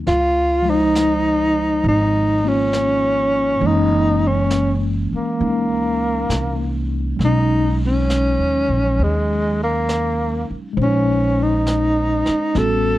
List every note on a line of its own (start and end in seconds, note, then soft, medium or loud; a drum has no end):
0.07 1.80 C#2 medium
0.07 0.71 F4 loud
0.07 brush sweep soft
0.07 snare soft
0.62 3.59 F3 soft
0.62 3.60 G#3 soft
0.69 1.85 D#4 medium
0.69 3.64 D#4 medium
0.69 3.62 C5 soft
0.95 snare soft
0.95 hi-hat pedal medium
1.84 3.57 G#1 medium
1.84 brush sweep soft
1.88 2.50 D#4 medium
2.44 3.61 A#3 soft
2.44 3.62 C#4 soft
2.44 3.62 F4 soft
2.48 3.68 C#4 medium
2.73 snare soft
2.73 hi-hat pedal soft
3.60 5.08 F#1 medium
3.60 7.20 E3 soft
3.60 7.19 G#3 soft
3.60 5.38 A#3 soft
3.60 brush sweep soft
3.65 5.40 C#4 medium
3.65 4.29 D#4 medium
4.27 4.77 C#4 medium
4.50 snare soft
4.50 hi-hat pedal soft
5.13 6.90 A#3 medium
5.13 muted upright bass stroke soft
5.39 6.26 C#2 medium
5.39 7.20 A#3 soft
5.39 7.21 C#4 soft
5.39 7.21 D#4 soft
5.39 brush sweep soft
6.29 7.16 C2 medium
6.29 snare soft
6.29 hi-hat pedal medium
7.17 8.35 B1 medium
7.17 10.76 F#3 soft
7.17 10.72 G#3 soft
7.17 brush sweep soft
7.17 snare soft
7.24 10.79 C#4 soft
7.24 7.80 D#4 loud
7.24 10.81 D#4 soft
7.86 9.05 C#4 medium
8.10 snare soft
8.10 hi-hat pedal soft
8.39 8.67 D#2 medium
8.68 8.97 A#1 medium
8.99 10.46 D#2 medium
8.99 brush sweep soft
9.03 9.62 G#3 medium
9.63 10.47 A#3 medium
9.89 snare soft
9.89 hi-hat pedal medium
10.50 muted upright bass stroke soft
10.73 12.23 A#1 medium
10.73 12.53 G#3 soft
10.73 12.55 C5 soft
10.77 12.55 C#4 soft
10.77 brush sweep soft
10.82 11.44 C#4 medium
10.82 12.59 D#4 medium
11.43 12.60 D#4 medium
11.66 snare soft
11.66 hi-hat pedal medium
12.26 muted upright bass stroke soft
12.26 snare soft
12.55 12.98 A1 medium
12.55 12.98 G3 soft
12.55 12.98 B3 soft
12.55 12.98 C#4 soft
12.55 12.98 F#4 soft
12.55 12.98 A4 medium
12.55 brush sweep soft
12.55 snare soft